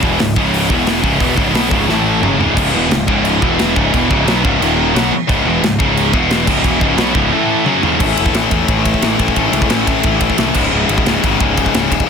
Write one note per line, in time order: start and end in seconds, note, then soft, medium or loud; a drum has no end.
0.02 0.18 E1 medium
0.02 0.18 E2 medium
0.02 0.19 B2 medium
0.02 0.19 E3 loud
0.02 kick loud
0.19 0.36 C#1 medium
0.19 0.33 C#2 medium
0.19 0.33 G#2 medium
0.19 snare loud
0.19 open hi-hat medium
0.36 0.68 C#1 medium
0.36 0.69 C#2 medium
0.36 0.69 G#2 medium
0.36 0.70 C#3 medium
0.36 kick loud
0.54 open hi-hat medium
0.69 1.02 E1 loud
0.69 1.01 E2 medium
0.69 1.01 B2 loud
0.69 1.02 E3 loud
0.69 kick loud
0.87 snare loud
0.87 open hi-hat medium
1.01 1.20 C#1 loud
1.01 1.18 C#2 medium
1.01 1.18 G#2 medium
1.01 1.19 C#3 loud
1.01 kick loud
1.18 1.37 E1 medium
1.18 1.35 E2 medium
1.18 1.35 B2 medium
1.18 1.36 E3 loud
1.18 kick loud
1.18 open hi-hat medium
1.36 1.52 C#1 loud
1.36 1.52 C#2 medium
1.36 1.53 G#2 loud
1.36 1.53 C#3 loud
1.36 kick loud
1.52 1.70 B1 medium
1.52 1.69 B2 medium
1.52 1.69 F#3 medium
1.52 1.69 B3 loud
1.52 snare loud
1.52 open hi-hat medium
1.69 1.87 C#1 medium
1.69 1.87 C#2 medium
1.69 1.87 G#2 medium
1.69 1.87 C#3 loud
1.69 kick loud
1.88 2.20 A1 medium
1.88 2.21 A2 medium
1.88 2.22 E3 loud
1.88 2.22 A3 loud
1.88 snare medium
2.21 2.38 F#1 medium
2.21 2.37 F#2 loud
2.21 2.38 C#3 loud
2.21 2.39 F#3 loud
2.21 mid tom medium
2.37 2.56 C#1 loud
2.37 2.54 C#2 loud
2.37 2.55 G#2 medium
2.37 2.56 C#3 medium
2.37 floor tom medium
2.55 2.73 C#1 medium
2.55 2.70 C#2 medium
2.55 2.71 G#2 medium
2.55 2.72 C#3 medium
2.55 kick loud
2.55 crash loud
2.55 crash medium
2.71 2.90 E1 loud
2.71 2.89 E2 medium
2.71 2.89 B2 medium
2.71 2.90 E3 loud
2.89 3.06 C#1 medium
2.89 3.04 C#2 medium
2.89 3.04 G#2 medium
2.89 snare loud
2.89 crash medium
3.07 3.40 C#1 loud
3.07 3.41 C#2 medium
3.07 3.41 G#2 medium
3.07 3.42 C#3 medium
3.07 kick loud
3.25 crash medium
3.42 3.74 E1 medium
3.42 3.74 E2 medium
3.42 3.75 B2 loud
3.42 3.75 E3 loud
3.42 kick loud
3.59 snare loud
3.59 crash medium
3.75 3.92 C#1 loud
3.75 3.92 C#2 loud
3.75 3.92 G#2 medium
3.75 3.92 C#3 loud
3.75 kick loud
3.93 4.09 E1 medium
3.93 4.09 E2 loud
3.93 4.09 B2 loud
3.93 4.09 E3 loud
3.93 kick loud
3.93 crash medium
4.09 4.25 C#1 medium
4.09 4.26 C#2 medium
4.09 4.26 G#2 loud
4.09 4.26 C#3 loud
4.09 kick loud
4.25 4.42 B1 loud
4.25 4.43 B2 medium
4.25 4.43 F#3 loud
4.25 4.44 B3 loud
4.25 snare loud
4.25 crash medium
4.44 4.59 C#1 loud
4.44 4.60 C#2 medium
4.44 4.60 G#2 medium
4.44 4.61 C#3 loud
4.44 kick loud
4.59 4.92 D#1 loud
4.59 4.94 D#2 loud
4.59 4.94 A#2 medium
4.59 4.94 D#3 loud
4.59 crash medium
4.94 5.10 B1 loud
4.94 5.11 B2 loud
4.94 5.11 F#3 loud
4.94 5.11 B3 loud
4.94 snare loud
4.94 crash medium
5.11 muted picked electric bass stroke soft
5.11 muted distorted electric guitar stroke medium
5.28 5.44 C#1 loud
5.28 5.45 C#2 loud
5.28 5.45 G#2 loud
5.28 5.45 C#3 loud
5.28 kick loud
5.28 crash medium
5.45 5.61 E1 loud
5.45 5.62 E2 loud
5.45 5.62 B2 loud
5.45 5.63 E3 loud
5.62 5.78 C#1 medium
5.62 5.76 C#2 medium
5.62 5.76 G#2 medium
5.62 snare loud
5.62 crash medium
5.78 6.11 C#1 loud
5.78 6.12 C#2 medium
5.78 6.13 G#2 medium
5.78 6.14 C#3 loud
5.78 kick loud
5.97 crash medium
6.12 6.45 E1 loud
6.12 6.46 E2 loud
6.12 6.47 B2 loud
6.12 6.47 E3 medium
6.12 kick loud
6.31 snare loud
6.31 crash medium
6.46 6.63 C#1 loud
6.46 6.63 C#2 medium
6.46 6.63 G#2 medium
6.46 6.64 C#3 loud
6.46 kick loud
6.46 crash loud
6.63 6.80 E1 medium
6.63 6.80 E2 loud
6.63 6.80 B2 loud
6.63 6.81 E3 loud
6.63 kick loud
6.63 crash medium
6.81 6.96 C#1 medium
6.81 6.97 C#2 medium
6.81 6.98 G#2 loud
6.81 6.98 C#3 loud
6.81 kick loud
6.97 7.13 B1 loud
6.97 7.14 B2 medium
6.97 7.15 F#3 loud
6.97 7.15 B3 medium
6.97 snare loud
6.97 crash medium
7.14 7.31 C#1 medium
7.14 7.31 C#2 medium
7.14 7.32 G#2 loud
7.14 7.32 C#3 loud
7.14 kick loud
7.32 7.65 A2 medium
7.32 7.66 E3 loud
7.32 7.66 A3 loud
7.66 7.82 F#2 loud
7.66 7.83 C#3 loud
7.66 7.83 F#3 loud
7.66 high tom medium
7.83 7.99 C#2 medium
7.83 8.00 G#2 medium
7.83 8.00 C#3 medium
7.83 floor tom medium
8.00 8.12 A1 medium
8.00 8.33 A2 medium
8.00 8.34 E3 medium
8.00 8.33 A3 loud
8.00 9.37 C#4 medium
8.00 9.38 E4 medium
8.00 9.36 A4 loud
8.00 kick loud
8.00 crash loud
8.17 8.29 E1 medium
8.17 ride medium
8.26 kick loud
8.33 8.45 A1 medium
8.33 8.50 A2 medium
8.33 8.50 E3 medium
8.33 8.50 A3 medium
8.33 snare loud
8.33 ride loud
8.51 8.63 E2 medium
8.51 8.67 A2 medium
8.51 8.68 E3 medium
8.51 8.68 A3 medium
8.51 kick medium
8.51 ride medium
8.68 8.91 A1 medium
8.68 9.01 A2 loud
8.68 9.03 E3 loud
8.68 9.02 A3 loud
8.68 kick loud
8.68 ride loud
8.85 kick medium
8.85 ride medium
8.94 kick medium
9.02 9.14 A1 medium
9.02 9.18 A2 medium
9.02 9.19 E3 loud
9.02 9.18 A3 loud
9.02 snare loud
9.02 ride loud
9.19 9.31 A1 loud
9.19 9.35 A2 medium
9.19 9.36 E3 medium
9.19 9.36 A3 medium
9.19 kick medium
9.19 ride medium
9.28 kick medium
9.36 9.48 A1 medium
9.36 9.68 A2 loud
9.36 9.70 E3 loud
9.36 9.70 A3 loud
9.36 10.55 C#4 loud
9.36 10.55 E4 loud
9.36 10.55 A4 loud
9.36 kick medium
9.36 ride loud
9.52 9.64 C#2 medium
9.52 ride medium
9.62 kick loud
9.69 9.92 A1 loud
9.69 9.86 A2 medium
9.69 9.87 E3 loud
9.69 9.85 A3 loud
9.69 snare loud
9.69 ride loud
9.87 10.04 A2 medium
9.87 10.04 E3 medium
9.87 10.05 A3 loud
9.87 kick loud
9.87 ride medium
10.03 10.27 A1 loud
10.03 10.37 A2 loud
10.03 10.38 E3 loud
10.03 10.38 A3 loud
10.03 kick loud
10.03 ride loud
10.21 kick medium
10.21 ride medium
10.30 kick medium
10.38 10.50 C2 medium
10.38 10.54 A2 loud
10.38 10.54 E3 loud
10.38 10.54 A3 loud
10.38 snare loud
10.38 ride loud
10.54 10.67 C#1 loud
10.54 10.72 C#2 medium
10.54 10.72 G#2 loud
10.54 10.71 C#3 loud
10.54 11.91 G#3 loud
10.54 11.91 E4 loud
10.54 kick loud
10.54 crash loud
10.72 10.84 C#1 loud
10.72 11.06 C#2 loud
10.72 11.06 G#2 loud
10.72 11.05 C#3 loud
10.88 11.00 G#1 medium
10.88 ride medium
10.98 kick medium
11.05 11.17 C#1 loud
11.05 11.23 C#2 medium
11.05 11.23 G#2 medium
11.05 11.24 C#3 loud
11.05 snare loud
11.05 ride loud
11.24 11.35 G#1 medium
11.24 11.41 C#2 medium
11.24 11.40 G#2 medium
11.24 11.39 C#3 loud
11.24 kick medium
11.24 ride medium
11.40 11.64 C#1 medium
11.40 11.74 C#2 medium
11.40 11.74 G#2 loud
11.40 11.73 C#3 loud
11.40 kick loud
11.40 ride medium
11.57 kick loud
11.57 ride medium
11.66 kick medium
11.74 11.86 C#1 medium
11.74 11.90 C#2 medium
11.74 11.91 G#2 medium
11.74 11.90 C#3 medium
11.74 snare loud
11.74 ride loud
11.91 12.03 C#1 loud
11.91 12.07 C#2 medium
11.91 12.07 G#2 medium
11.91 12.07 C#3 loud
11.91 kick medium
11.91 ride medium
12.00 kick medium